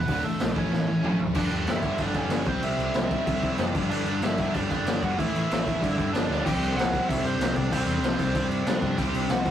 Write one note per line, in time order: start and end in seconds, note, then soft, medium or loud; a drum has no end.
0.00 0.23 B3 medium
0.00 0.26 B4 loud
0.08 0.20 D1 medium
0.08 0.24 D2 loud
0.08 0.24 A2 medium
0.08 0.24 D3 loud
0.08 kick loud
0.08 open hi-hat medium
0.24 0.36 A1 medium
0.24 0.39 D2 medium
0.24 0.39 A2 medium
0.24 0.40 D3 medium
0.24 0.54 A3 medium
0.24 0.57 A4 medium
0.40 0.53 B1 medium
0.40 0.54 D2 medium
0.40 0.55 A2 medium
0.40 0.55 D3 medium
0.40 snare loud
0.40 open hi-hat medium
0.56 0.67 A1 medium
0.56 0.70 A2 medium
0.56 0.70 E3 loud
0.56 0.72 A3 loud
0.56 1.17 C#4 medium
0.56 1.17 C#5 medium
0.56 kick loud
0.71 0.82 A1 medium
0.71 0.86 A2 medium
0.71 0.86 E3 medium
0.71 0.87 A3 loud
0.71 snare medium
0.87 0.99 A1 medium
0.87 1.02 A2 medium
0.87 1.03 E3 medium
0.87 1.02 A3 medium
1.04 1.15 A1 medium
1.04 1.16 A2 medium
1.04 1.17 E3 loud
1.04 1.20 A3 loud
1.04 mid tom medium
1.17 1.31 A1 medium
1.17 1.33 A2 medium
1.17 1.34 E3 medium
1.17 1.35 A3 medium
1.17 floor tom medium
1.33 1.47 G1 medium
1.33 1.49 G2 medium
1.33 1.49 D3 loud
1.33 1.48 G3 loud
1.33 1.66 D4 medium
1.33 kick loud
1.33 crash loud
1.33 crash medium
1.38 1.70 D5 medium
1.49 1.62 G1 medium
1.49 1.65 G2 medium
1.49 1.66 D3 medium
1.49 1.67 G3 medium
1.49 crash medium
1.66 1.89 G1 medium
1.66 1.84 G2 medium
1.66 1.82 D3 medium
1.66 1.83 G3 loud
1.66 1.98 E4 medium
1.66 snare loud
1.66 crash medium
1.72 2.02 E5 loud
1.82 1.99 G2 medium
1.82 1.99 D3 medium
1.82 2.00 G3 medium
1.82 kick medium
1.82 crash medium
1.98 2.10 G1 medium
1.98 2.15 G2 medium
1.98 2.15 D3 medium
1.98 2.14 G3 loud
1.98 2.15 D4 medium
1.98 2.17 D5 medium
1.98 kick medium
1.98 crash medium
2.14 2.26 G1 medium
2.14 2.30 G2 medium
2.14 2.31 D3 medium
2.14 2.32 G3 medium
2.14 2.46 C#4 medium
2.14 2.48 C#5 medium
2.14 kick medium
2.14 crash medium
2.29 2.41 G1 medium
2.29 2.46 G2 medium
2.29 2.47 D3 medium
2.29 2.49 G3 loud
2.29 snare loud
2.29 crash medium
2.45 2.58 C2 medium
2.45 2.64 C3 loud
2.45 2.64 G3 medium
2.45 2.62 C4 medium
2.45 2.63 C5 medium
2.45 kick medium
2.45 crash medium
2.49 2.63 C4 loud
2.61 2.72 C2 medium
2.61 2.80 C4 loud
2.61 3.55 E4 medium
2.61 3.55 E5 medium
2.61 crash medium
2.65 2.79 C3 medium
2.65 2.81 G3 loud
2.78 2.89 C2 medium
2.78 2.95 C3 medium
2.78 2.95 G3 medium
2.78 2.94 C4 medium
2.78 crash medium
2.94 3.16 C2 loud
2.94 3.11 C3 medium
2.94 3.13 G3 loud
2.94 3.12 C4 loud
2.94 snare loud
2.94 crash medium
3.11 3.26 C3 medium
3.11 3.25 G3 medium
3.11 3.25 C4 medium
3.11 kick medium
3.11 crash medium
3.26 3.38 C2 medium
3.26 3.40 C3 medium
3.26 3.41 G3 loud
3.26 3.42 C4 loud
3.26 kick loud
3.26 crash medium
3.41 3.54 C2 medium
3.41 3.58 C3 medium
3.41 3.57 G3 medium
3.41 3.57 C4 medium
3.41 kick medium
3.41 crash medium
3.57 3.69 F#1 loud
3.57 3.74 C3 medium
3.57 3.74 G3 loud
3.57 3.73 C4 loud
3.57 snare loud
3.57 crash medium
3.75 3.86 G1 medium
3.75 3.92 G2 medium
3.75 3.92 D3 loud
3.75 3.91 G3 loud
3.75 kick medium
3.75 crash medium
3.90 4.01 G1 medium
3.90 4.07 G2 medium
3.90 4.08 D3 loud
3.90 4.08 G3 loud
3.90 4.20 D4 medium
3.90 4.20 D5 medium
3.90 crash medium
4.05 4.16 G1 medium
4.05 4.22 G2 medium
4.05 crash medium
4.09 4.22 D3 medium
4.09 4.21 G3 medium
4.21 4.43 G1 loud
4.21 4.37 G2 loud
4.21 4.38 D3 medium
4.21 4.38 G3 loud
4.21 4.53 E4 medium
4.21 snare loud
4.21 crash medium
4.25 4.56 E5 medium
4.38 4.54 G2 medium
4.38 4.54 D3 loud
4.38 4.53 G3 medium
4.38 kick medium
4.38 crash medium
4.54 4.66 G1 medium
4.54 4.68 G2 medium
4.54 4.69 D3 medium
4.54 4.70 G3 medium
4.54 4.59 D4 medium
4.54 4.59 D5 medium
4.54 kick medium
4.54 crash medium
4.70 4.81 G1 loud
4.70 4.86 G2 loud
4.70 4.85 D3 loud
4.70 4.84 G3 loud
4.70 5.00 D4 medium
4.70 5.03 D5 medium
4.70 kick medium
4.70 crash medium
4.85 4.96 G1 medium
4.85 5.00 G2 medium
4.85 5.01 D3 medium
4.85 5.01 G3 medium
4.85 snare loud
4.85 crash medium
5.01 5.13 G1 medium
5.01 5.16 G2 medium
5.01 5.17 D3 medium
5.01 5.17 G3 medium
5.01 5.18 F#4 medium
5.01 5.18 F#5 medium
5.01 kick medium
5.01 crash medium
5.16 5.30 A1 medium
5.16 5.33 A2 loud
5.16 5.32 E3 medium
5.16 5.32 A3 loud
5.16 6.09 E4 medium
5.16 6.13 E5 medium
5.16 kick loud
5.16 crash medium
5.33 5.45 A1 medium
5.33 5.47 A2 medium
5.33 5.48 E3 medium
5.33 5.49 A3 loud
5.33 crash medium
5.49 5.82 A1 medium
5.49 5.63 A2 medium
5.49 5.63 E3 loud
5.49 5.62 A3 loud
5.49 snare loud
5.49 crash medium
5.64 5.80 A2 medium
5.64 5.80 E3 medium
5.64 5.79 A3 loud
5.64 kick medium
5.64 crash medium
5.80 5.93 G1 medium
5.80 5.97 G2 loud
5.80 5.96 D3 medium
5.80 5.96 G3 medium
5.80 kick loud
5.80 crash medium
5.97 6.08 G1 medium
5.97 6.11 G2 medium
5.97 6.12 D3 medium
5.97 6.13 G3 medium
5.97 kick medium
5.97 crash medium
6.12 6.24 G1 medium
6.12 6.27 G2 medium
6.12 6.27 D3 loud
6.12 6.26 G3 loud
6.12 6.28 D4 medium
6.12 6.31 D5 medium
6.12 snare loud
6.12 crash medium
6.28 6.40 D2 medium
6.28 6.42 G2 medium
6.28 6.43 D3 medium
6.28 6.43 G3 medium
6.28 6.44 D4 medium
6.32 6.47 D5 medium
6.32 snare medium
6.43 7.70 C3 medium
6.43 7.72 G3 loud
6.43 7.74 C4 loud
6.43 6.74 G4 medium
6.43 6.74 G5 medium
6.43 kick loud
6.43 crash loud
6.43 crash medium
6.47 6.57 C2 medium
6.60 6.71 C2 medium
6.60 crash medium
6.74 6.98 C2 loud
6.74 6.92 C3 medium
6.74 6.92 G3 medium
6.74 6.91 C4 loud
6.74 7.05 F#4 medium
6.74 7.09 F#5 loud
6.79 snare loud
6.79 crash medium
6.92 7.07 C3 medium
6.92 7.07 G3 medium
6.92 7.08 C4 loud
6.92 kick medium
6.92 crash medium
7.07 7.20 C2 loud
7.07 7.39 C3 loud
7.07 7.39 G3 loud
7.07 7.40 C4 loud
7.07 7.23 E4 medium
7.07 7.25 E5 medium
7.07 kick medium
7.07 crash loud
7.23 7.34 G2 medium
7.23 7.54 C4 medium
7.23 7.58 C5 medium
7.23 crash medium
7.38 7.50 C2 loud
7.38 7.56 C3 medium
7.38 7.55 G3 medium
7.38 7.54 C4 medium
7.38 crash medium
7.42 snare loud
7.54 7.67 C2 loud
7.54 7.71 C3 medium
7.54 7.71 G3 medium
7.54 7.72 C4 loud
7.54 7.70 D4 medium
7.54 7.72 D5 medium
7.54 kick medium
7.54 crash medium
7.70 7.82 C2 medium
7.70 8.98 C3 medium
7.70 8.99 G3 loud
7.70 7.85 C4 medium
7.70 9.01 C4 loud
7.70 7.85 C5 medium
7.70 kick loud
7.70 crash loud
7.86 7.97 E2 medium
7.86 8.46 C4 medium
7.86 8.46 C5 medium
7.86 crash medium
8.02 8.13 C2 loud
8.02 8.20 C3 medium
8.02 8.19 G3 medium
8.02 8.19 C4 medium
8.02 snare loud
8.02 crash medium
8.19 8.31 C2 loud
8.19 8.34 C3 medium
8.19 8.35 G3 medium
8.19 8.35 C4 loud
8.19 kick loud
8.19 crash medium
8.35 8.46 C2 medium
8.35 8.65 C3 loud
8.35 8.66 G3 loud
8.35 8.67 C4 loud
8.35 kick loud
8.35 crash medium
8.49 8.60 G2 loud
8.49 crash medium
8.65 8.77 C3 loud
8.65 8.82 C3 loud
8.65 8.82 G3 loud
8.65 8.81 C4 loud
8.65 8.80 D4 medium
8.65 8.79 D5 medium
8.65 snare loud
8.65 crash medium
8.81 8.94 G2 medium
8.81 8.97 C3 medium
8.81 8.97 G3 loud
8.81 8.98 C4 loud
8.81 8.96 D4 medium
8.81 8.98 D5 medium
8.81 kick medium
8.81 crash medium
8.98 9.09 C2 loud
8.98 9.51 C3 loud
8.98 9.51 G3 medium
8.98 9.51 C4 loud
8.98 9.28 G4 medium
8.98 9.30 G5 medium
8.98 kick medium
8.98 crash medium
9.14 9.25 C2 medium
9.14 crash medium
9.29 9.51 C2 medium
9.29 9.44 C3 medium
9.29 9.44 G3 loud
9.29 9.43 C4 loud
9.29 9.51 F#4 medium
9.29 9.51 F#5 loud
9.29 snare loud
9.29 crash medium
9.44 9.51 C3 medium
9.44 9.51 G3 medium
9.44 9.51 C4 medium
9.44 kick medium
9.44 crash medium